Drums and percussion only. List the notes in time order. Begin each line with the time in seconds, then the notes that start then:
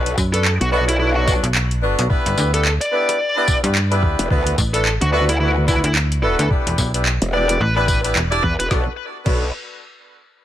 0.06 closed hi-hat
0.18 kick, tambourine
0.34 closed hi-hat
0.45 clap
0.61 closed hi-hat
0.89 cross-stick, closed hi-hat
1.28 kick, tambourine
1.44 closed hi-hat
1.55 clap
1.71 closed hi-hat
1.99 closed hi-hat
2.10 kick
2.26 closed hi-hat
2.38 tambourine
2.54 closed hi-hat
2.65 clap
2.81 closed hi-hat
3.09 cross-stick, closed hi-hat
3.48 kick, tambourine
3.64 closed hi-hat
3.75 clap
3.92 cross-stick, closed hi-hat
4.03 kick, cross-stick
4.19 closed hi-hat
4.31 kick
4.47 closed hi-hat
4.58 kick, tambourine
4.74 closed hi-hat
4.85 clap
5.01 closed hi-hat
5.29 cross-stick, closed hi-hat
5.68 kick, tambourine
5.84 closed hi-hat
5.95 clap
6.12 closed hi-hat
6.39 closed hi-hat
6.51 kick
6.67 closed hi-hat
6.78 kick, tambourine
6.94 closed hi-hat
7.06 clap
7.22 closed hi-hat
7.49 cross-stick, closed hi-hat
7.88 kick, tambourine
8.04 closed hi-hat
8.16 clap
8.32 cross-stick, closed hi-hat
8.43 kick, cross-stick
8.60 closed hi-hat
8.71 kick, snare
9.26 kick, crash